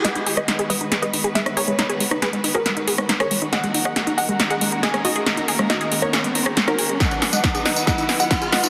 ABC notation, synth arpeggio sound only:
X:1
M:4/4
L:1/16
Q:1/4=138
K:G#m
V:1 name="Synth arpeggio sound"
G, D G G, D G G, D G G, D G G, D G G, | D G G, D G G, D G G, D G G, D G G, D | G G, D G G, D G G, D G G, D G G, D G | G, D G G, D G G, D G G, D G G, D G G, |
G, D G G, D G G, D G, D G G, D G G, D |]